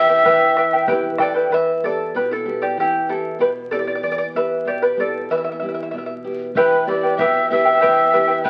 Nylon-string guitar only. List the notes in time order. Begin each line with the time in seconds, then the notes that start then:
Already playing: E3 B3 E4 G4
0.24 E3
0.88 B3 E4 G4
1.51 E3
1.83 B3 E4 G4
2.14 B2
2.45 B3 E4 G4
2.77 E3
3.08 B3 E4 G4
3.39 B2
3.71 B3 E4 G4
4.03 E3
4.35 B3 E4 G4
4.65 B2
4.97 B3 E4 G4
5.30 E3
5.62 B3 E4 G4
5.93 B2
6.24 B3 E4 G4
6.56 E3
6.86 B3 E4 G4
7.18 B2
7.50 B3 E4 G4
7.82 E3
8.13 B3 E4 G4
8.46 B2